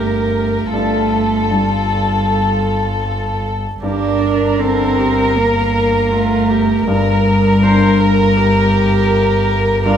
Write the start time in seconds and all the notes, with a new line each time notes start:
Already playing: G1 G2 D3 A3 G4 A#4
0.72 G1 G2 A3 F4 A4
1.51 G3
3.82 G1 G2 D4 G4 A#4
4.20 A#4
4.59 D3 C4 A4
4.98 G4
5.36 A#3 A#4
6.11 A3 F4
6.50 G4
6.87 G1 G2 G3 A#4
7.63 D4 C5
8.00 A#4
8.38 G4
9.84 G2 D4 F4 A#4